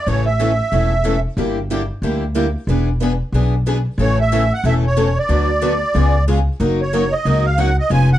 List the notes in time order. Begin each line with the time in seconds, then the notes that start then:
0.07 A1 C#3 E3 A3 C#4 E4 A4 C#5
0.26 E5
0.39 C#3 E3 A3 C#4 E4 A4
0.72 E1 C#3 E3 A3 C#4 E4 A4
1.04 C#3 E3 A3 C#4 E4 A4
1.37 G1 D3 G3 A#3 E4 G4
1.70 D3 G3 A#3 E4 G4
2.02 D2 D3 G3 A#3 E4 G4
2.35 D3 G3 A#3 E4 G4
2.67 E1 E3 B3 D4 G#4 B4
3.00 E3 B3 D4 G#4 B4
3.32 B1 E3 B3 D4 G#4 B4
3.66 E3 B3 D4 G#4 B4
3.98 A1 C#3 E3 A3 C#4 E4 A4 C#5
4.21 E5
4.32 C#3 E3 A3 C#4 E4 A4
4.54 F#5
4.64 E1 C#3 E3 A3 C#4 E4 A4 E5
4.87 C#5
4.97 C#3 E3 A3 C#4 E4 A4
5.18 D5
5.29 D2 D3 F#3 A3 B3 D4 F#4 B4
5.62 D3 F#3 A3 B3 D4 F#4 B4
5.94 C#2 C#3 G#3 B3 F4 G#4
6.28 C#3 G#3 B3 F4 G#4
6.60 F#1 F#3 A#3 C#4 D#4 F#4 A#4
6.82 C#5
6.93 F#3 A#3 C#4 D#4 F#4 A#4
7.13 D#5
7.25 C#2 F#3 A#3 C#4 D#4 F#4 A#4
7.45 F5
7.58 F#3 A#3 C#4 D#4 F#4 A#4 F#5
7.79 D#5
7.90 F1 F3 G#3 B3 C#4 F4 G#4 B4 G#5
8.13 F#5